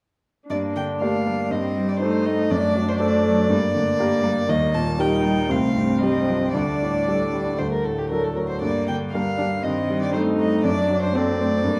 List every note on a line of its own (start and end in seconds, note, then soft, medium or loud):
0.49 1.48 G2 soft
0.49 0.97 A#3 soft
0.49 1.52 D4 soft
0.49 0.58 D5 medium
0.76 1.16 D3 soft
0.76 0.84 G5 soft
1.01 1.27 A3 soft
1.01 1.23 A#3 soft
1.01 1.24 G4 soft
1.01 1.24 D5 soft
1.01 1.52 F5 soft
1.25 1.49 G3 soft
1.25 1.51 A#3 soft
1.50 2.48 G2 soft
1.50 2.48 G3 soft
1.50 1.99 C4 soft
1.50 1.90 D#5 soft
1.77 2.16 G3 soft
1.88 1.99 D5 soft
2.00 2.24 A3 soft
2.00 2.52 D#4 soft
2.00 2.24 A4 soft
2.00 2.27 C5 soft
2.00 2.24 C5 soft
2.25 2.51 A3 soft
2.25 2.52 D#5 medium
2.50 3.47 F#2 soft
2.50 2.99 A3 soft
2.50 3.51 D4 soft
2.50 2.90 D5 medium
2.75 3.15 F#3 soft
2.88 3.00 C5 soft
2.99 3.22 A3 soft
2.99 3.27 A3 soft
2.99 3.22 A4 soft
2.99 3.23 C5 soft
2.99 4.50 D5 medium
3.25 3.50 F#3 soft
3.25 3.49 A3 soft
3.49 4.46 G2 soft
3.49 3.58 G3 soft
3.49 4.48 A#3 soft
3.74 4.14 D3 soft
3.74 3.82 A3 soft
3.98 4.24 A#3 soft
3.98 4.22 A#3 soft
3.98 4.22 G4 soft
3.98 4.22 A#4 soft
4.23 4.47 G3 soft
4.23 4.49 A#3 soft
4.47 5.47 D#2 soft
4.47 5.50 G3 soft
4.47 5.01 A#3 soft
4.47 4.76 D#5 medium
4.74 5.14 A#2 soft
4.74 5.01 A5 medium
4.99 5.22 G3 soft
4.99 5.51 D#4 soft
4.99 5.22 G4 soft
4.99 5.22 A#4 soft
4.99 5.52 G5 medium
5.25 5.50 G3 soft
5.49 6.50 C2 soft
5.49 6.01 A3 soft
5.49 5.74 C4 soft
5.49 6.01 F5 medium
5.75 6.17 G2 soft
5.75 6.56 C4 soft
6.00 6.28 G3 soft
6.00 6.26 G3 soft
6.00 6.26 G4 soft
6.00 6.52 D#5 medium
6.04 6.26 C5 soft
6.27 6.52 F3 soft
6.27 6.55 G3 soft
6.53 7.56 D2 soft
6.53 7.59 G3 soft
6.53 7.58 D4 soft
6.53 7.59 D5 medium
6.82 7.23 A2 soft
7.08 7.30 G3 soft
7.08 7.31 D4 soft
7.08 7.31 A4 soft
7.33 7.59 G3 soft
7.57 8.60 D2 soft
7.57 8.41 A3 soft
7.57 8.40 A3 soft
7.57 7.71 C5 soft
7.72 7.86 A#4 soft
7.84 8.26 A2 soft
7.84 8.00 A4 soft
7.98 8.09 G4 soft
8.10 8.34 F#3 soft
8.10 8.34 D4 soft
8.10 8.35 A4 soft
8.10 8.24 A#4 soft
8.23 8.37 A4 soft
8.35 8.62 F#3 soft
8.35 8.48 A#4 soft
8.49 8.61 C5 soft
8.62 9.61 G2 soft
8.62 9.15 G3 soft
8.62 9.10 A#3 soft
8.62 8.87 D5 medium
8.88 9.29 D3 soft
8.88 8.96 G5 soft
9.12 9.64 D3 soft
9.12 9.37 G3 soft
9.12 9.21 A#3 soft
9.12 9.37 D4 soft
9.12 9.37 A#4 soft
9.12 9.64 F5 medium
9.38 9.64 G3 soft
9.38 9.46 D4 soft
9.62 10.62 G2 soft
9.62 10.15 D#3 soft
9.62 10.14 C4 soft
9.62 10.01 D#5 medium
9.90 10.30 G3 soft
10.02 10.12 D5 medium
10.13 10.61 G3 soft
10.13 10.37 A3 soft
10.13 10.37 C4 soft
10.13 10.65 D#4 soft
10.13 10.37 A4 soft
10.13 10.21 C5 medium
10.39 10.64 A3 soft
10.39 10.63 D#5 medium
10.62 11.62 F#2 soft
10.62 11.14 F#3 soft
10.62 11.15 D4 soft
10.62 11.02 D5 medium
10.90 11.30 F#3 soft
11.02 11.16 C5 medium
11.13 11.40 A#3 soft
11.13 11.65 C4 soft
11.13 11.38 C4 soft
11.13 11.38 D4 soft
11.13 11.38 A4 soft
11.13 11.80 D5 medium
11.38 11.64 A3 soft
11.38 11.65 C4 soft
11.64 11.80 G2 soft
11.64 11.80 G3 soft
11.64 11.80 A#3 soft